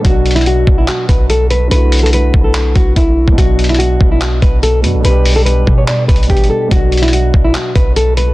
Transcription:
<<
  \new Staff \with { instrumentName = "Nylon-string guitar" } { \time 4/4 \key b \minor \tempo 4 = 144 fis'8. e'16 fis'8. e'16 fis'8 b'8 a'8 b'8 | b'8. a'16 b'8. a'8. fis'8 e'4 | fis'8. e'16 fis'8. e'16 fis'8 b'8 a'8 b'8 | b'8. a'16 b'8. cis''16 d''8 b'8 g'8 a'8 |
fis'8. e'16 fis'8. e'16 fis'8 b'8 a'8 b'8 | }
  \new Staff \with { instrumentName = "Grand piano" } { \time 4/4 \key b \minor <b, fis d' fis'>1 | <d a e' fis'>1 | <b, fis d' fis'>2.~ <b, fis d' fis'>8 <b, fis d' fis'>8 | <b, g d' g'>2. <b, g d' g'>4 |
<b, fis d' fis'>1 | }
  \new Staff \with { instrumentName = "808-style bass" } { \clef bass \time 4/4 \key b \minor b,,4. b,,8 r8 b,,4. | b,,4. b,,4 b,,8 b,,8. b,,16 | b,,4. b,,4 b,,4 fis,16 b,,16 | b,,4. b,4 b,,8 a,,8 r8 |
b,,4. b,,8 r8 b,,4. | }
  \new DrumStaff \with { instrumentName = "Drums" } \drummode { \time 4/4 <hh bd>8 hh32 hh32 hh32 hh32 hh8 bd8 <hc hh>8 <hh bd>8 hh8 hh8 | \tuplet 3/2 { hh16 r16 r16 <hh hho>16 hh16 hh16 } hh8 bd8 <hc hh>8 <hh bd>8 <hh bd>8. bd16 | <hh bd>8 hh32 hh32 hh32 hh32 hh8 bd8 <hc hh>8 <hh bd>8 hh8 hh8 | hh8 hho8 hh8 bd8 \tuplet 3/2 { <hc hh>16 r16 r16 <hh bd>16 hh16 hh16 <hh bd>16 hh16 hh16 r16 r16 r16 } |
<hh bd>8 hh32 hh32 hh32 hh32 hh8 bd8 <hc hh>8 <hh bd>8 hh8 hh8 | }
>>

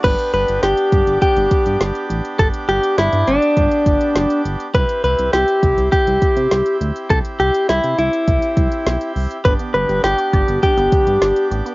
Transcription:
<<
  \new Staff \with { instrumentName = "Clean electric guitar" } { \time 4/4 \key g \major \tempo 4 = 102 b'8 b'8 g'4 g'4. r8 | a'8 g'8 e'8 d'2 r8 | b'8 b'8 g'4 g'4. r8 | a'8 g'8 e'8 e'2 r8 |
b'8 b'8 g'4 g'4. r8 | }
  \new Staff \with { instrumentName = "Accordion" } { \time 4/4 \key g \major << { g'1~ | g'1~ | g'1~ | g'1~ |
g'1 | } \\ { <b d'>1~ | <b d'>1 | <c' e'>1~ | <c' e'>1 |
<b d'>1 | } >> }
  \new Staff \with { instrumentName = "Synth arpeggio sound" } { \time 4/4 \key g \major r1 | r1 | r1 | r1 |
d16 b16 d16 g'16 r16 d''16 d''16 b16 d16 b16 d16 g'16 d''16 r16 g'16 b16 | }
  \new Staff \with { instrumentName = "Analog synth bass" } { \clef bass \time 4/4 \key g \major g,,16 r16 g,,16 g,,16 g,,16 r16 g,,16 g,,16 r16 g,,16 r16 g,16 g,,16 r16 a,,16 r16 | g,,16 r16 g,,16 r16 g,,16 g,16 g,,16 r16 g,,16 r16 g,,16 r16 fis,,16 r16 g,,16 r16 | c,16 r16 c,16 c,16 c,16 r16 c,16 c,16 r16 c,16 r16 c16 c,16 r16 d,16 r16 | c,16 r16 c,16 r16 c,16 c16 c,16 r16 c,16 r16 c,16 r16 b,,16 r16 c,16 r16 |
g,,16 r16 g,,16 g,,16 g,,16 r16 g,,16 g,,16 r16 g,,16 r16 g,16 g,,16 r16 a,,16 r16 | }
  \new DrumStaff \with { instrumentName = "Drums" } \drummode { \time 4/4 <cymc hh bd>16 hh16 hh16 hh16 <hh sn>16 hh16 <hh bd>16 hh16 <hh bd>16 hh16 <hh bd>16 hh16 <hh sn>16 hh16 hh16 hh16 | <hh bd>16 hh16 hh16 hh16 <hh sn>16 hh16 hh16 hh16 <hh bd>16 hh16 <hh bd>16 hh16 <hh sn>16 hh16 hh16 hh16 | <hh bd>16 hh16 hh16 hh16 <hh sn>16 hh16 <hh bd>16 hh16 <hh bd>16 hh16 <hh bd>16 hh16 <hh sn>16 hh16 hh16 hh16 | <hh bd>16 hh16 hh16 hh16 <hh sn>16 hh16 hh16 hh16 <hh bd>16 hh16 <hh bd>16 hh16 <hh sn>16 hh16 hho16 hh16 |
<hh bd>16 hh16 hh16 hh16 <hh sn>16 hh16 <hh bd>16 hh16 <hh bd>16 hh16 <hh bd>16 hh16 <hh sn>16 hh16 hh16 hh16 | }
>>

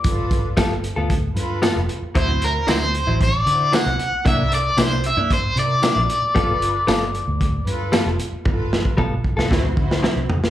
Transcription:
<<
  \new Staff \with { instrumentName = "Overdriven electric guitar" } { \time 4/4 \key g \mixolydian \tempo 4 = 114 d''4 r2. | c''8 bes'8 c''4 d''4 fis''4 | e''8 d''8 c''8 e''8 c''8 d''4.~ | d''2~ d''8 r4. |
r1 | }
  \new Staff \with { instrumentName = "String section" } { \time 4/4 \key g \mixolydian <f' a' b'>4 r4. <f' a' b'>8. r8. | <e' fis' c''>4 r4. <e' fis' c''>8. r8. | <e' bes' d''>4 r4. <e' bes' d''>8. r8. | <f' a' b'>4 r4. <f' a' b'>8. r8. |
<f' a' b'>4 r4 <e' fis' c''>8 <e' fis' c''>8. r8. | }
  \new Staff \with { instrumentName = "Clean electric guitar" } { \time 4/4 \key g \mixolydian r4 <g b f' a'>16 r8 <b f' a'>16 r4 <g b f' a'>16 r8. | <d fis c' e'>16 r8. <d fis c' e'>16 r8 <fis c' e'>16 r4 <d fis c' e'>16 r8. | <c bes d' e'>16 r8. <c bes d' e'>16 r8 <bes d' e'>16 r4 <c bes d' e'>16 r8. | <g b f' a'>16 r8. <g b f' a'>16 r4. r16 <g b f' a'>16 r8. |
r4 <g b f' a'>16 r8 <b f' a'>16 <d fis c' e'>16 r8. <d fis c' e'>16 r8. | }
  \new Staff \with { instrumentName = "Fingered electric bass" } { \clef bass \time 4/4 \key g \mixolydian g,,4 g,,8. d,8. g,8. f,,16 r8 | d,4 d,8. a,,8. d8. c,16 r8 | c,4 c,8. g,8. c8. bes,,16 r8 | g,,4 g,,8. d,8. g,8. f,,16 r8 |
g,,4 g,,8. c,16 d,8 d8. c,16 r8 | }
  \new DrumStaff \with { instrumentName = "Drums" } \drummode { \time 4/4 <hh bd>8 <hh bd>8 <hh bd sn tamb>8 hh8 <hh bd>8 hh8 <hh sn tamb>8 hh8 | <hh bd>8 hh8 <hh sn tamb>8 hh8 <hh bd>8 hh8 <hh sn tamb>8 hh8 | <hh bd>8 hh8 <hh sn tamb>8 hh8 <hh bd>8 hh8 <hh sn tamb>8 hh8 | <hh bd>8 hh8 <hh sn tamb>8 hh8 <hh bd>8 hh8 <hh sn tamb>8 hh8 |
<bd tommh>8 sn16 bd16 <bd toml>8 bd16 sn16 <bd sn>8 bd16 sn16 sn8 tomfh16 sn16 | }
>>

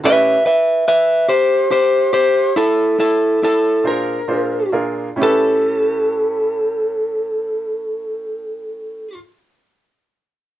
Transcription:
<<
  \new Staff \with { instrumentName = "Lead electric guitar" } { \time 12/8 \key a \mixolydian \tempo 4. = 44 <b' e''>8 <b' e''>8 <b' e''>8 <g' c''>8 <g' c''>8 <g' c''>8 <e' a'>8 <e' a'>8 <e' a'>8 bes'4 r8 | a'1. | }
  \new Staff \with { instrumentName = "Upright piano" } { \time 12/8 \key a \mixolydian <a, cis' e' g' b'>8 r1 <bes, d' f' aes' c''>8 <bes, d' f' aes' c''>8 <bes, d' f' aes' bes'>8 | <a, cis' e' g' b'>1. | }
>>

